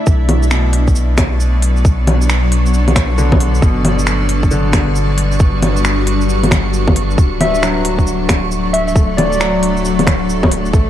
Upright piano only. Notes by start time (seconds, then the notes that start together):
0.51 B2
3.18 D3
3.63 B2
4.51 D3
7.63 F#3
8.96 A3
9.40 F#3
10.74 A3